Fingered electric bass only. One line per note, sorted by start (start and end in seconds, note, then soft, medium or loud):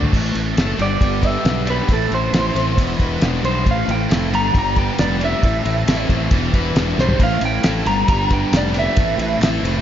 0.13 0.31 A1 medium
0.35 0.53 A1 medium
0.57 0.74 F#1 medium
0.79 0.96 G1 medium
1.01 1.36 G1 medium
1.45 1.80 B1 medium
1.89 2.06 A1 medium
2.11 2.29 A1 medium
2.32 2.50 A1 medium
2.55 2.79 A1 medium
2.78 2.95 E1 loud
3.00 3.17 E1 medium
3.22 3.39 E1 medium
3.43 3.66 B1 medium
3.66 3.83 A1 loud
3.88 4.05 A1 medium
4.10 4.32 F1 medium
4.32 4.50 G1 medium
4.54 4.89 G1 medium
4.99 5.33 F1 medium
5.43 5.60 A1 medium
5.65 5.83 A1 medium
5.87 6.05 A1 medium
6.10 6.27 A1 medium
6.32 6.49 E1 loud
6.54 6.71 E1 medium
6.76 6.93 E1 medium
6.98 7.15 B1 medium
7.19 7.37 A1 medium
7.41 7.59 A1 medium
7.64 7.82 A1 medium
7.86 8.03 G1 medium
8.09 8.44 G1 medium
8.52 8.87 F1 medium
8.97 9.15 A1 medium
9.18 9.36 A1 medium
9.41 9.59 A1 medium
9.63 9.81 F1 medium